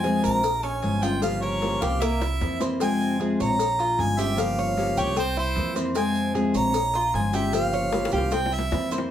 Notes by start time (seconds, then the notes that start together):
Already playing: F2 G#5
0.03 C3 F3 G#3 C4 F4 G#4, cowbell, maracas
0.24 A#1 A#4 A#5, maracas
0.43 muted nylon-string guitar stroke, cowbell, maracas
0.63 C#4, cowbell, maracas
0.67 G#5
0.82 G1 F3 G#3 C#4 F4 G#5, cowbell, maracas
1.02 G#3 C#4 F4 G5, cowbell, maracas
1.22 C#3 F3 A#3 F4 G4 F5, cowbell, maracas
1.42 A#4 C#5, maracas
1.62 C#3 F3 A#3 F4 G4, cowbell, high bongo, maracas
1.82 C2 G4 F5, high bongo, maracas
2.01 A#3 E5, muted nylon-string guitar stroke, cowbell, high bongo, maracas
2.21 E4, low bongo, maracas
2.40 F2 E3 A#3 C4 E4, cowbell, low bongo, maracas
2.60 E3 A#3 C4 E4 C5, cowbell, low bongo, maracas
2.80 C3 F3 G#3 C4 F4 G#5, cowbell, maracas
3.01 maracas
3.19 C3 F3 G#3 C4 F4 G#4, cowbell, maracas
3.40 A#1 C#5 A#5, maracas
3.58 muted nylon-string guitar stroke, cowbell, maracas
3.79 F4, cowbell, maracas
3.97 G1 F3 G#3 C#4 F4 G#5, cowbell, maracas
4.17 G#3 C#4 F4 G4 E5, cowbell, maracas
4.36 C#3 F3 A#3 F4 G4 F5, cowbell, maracas
4.58 C#5, maracas
4.77 C#3 F3 A#3 F4 G4, cowbell, maracas
4.97 C2 G4 C#5, maracas
5.15 C4 C5, muted nylon-string guitar stroke, cowbell, maracas
5.37 E4 C5, maracas
5.56 F2 E3 A#3 C4 E4, cowbell, maracas
5.75 E3 A#3 C4 E4 C5, cowbell, maracas
5.94 C3 F3 G#3 C4 F4 G#5, cowbell, maracas
6.15 maracas
6.34 C3 F3 G#3 C4 F4 G#4, cowbell, maracas
6.54 A#1 C#5 A#5, maracas
6.74 muted nylon-string guitar stroke, cowbell, maracas
6.94 F4, cowbell, maracas
7.13 G1 F3 G#3 C#4 F4 G#5, cowbell, maracas
7.33 G#3 C#4 F4 G4 E5, cowbell, maracas
7.52 C#3 F3 A#3 F4 G4 F5, cowbell, maracas
7.73 C#5, maracas
7.93 C#3 F3 A#3 F4 G4, cowbell, high bongo, maracas
8.05 high bongo
8.12 C2 G4 F5, maracas
8.18 high bongo
8.31 C4 G5, muted nylon-string guitar stroke, cowbell, high bongo, maracas
8.46 low bongo
8.52 E4 E5, maracas
8.59 low bongo
8.71 F2 E3 A#3 C4 E4, cowbell, low bongo, maracas
8.91 E3 A#3 C4 E4 C5, cowbell, maracas
8.98 low bongo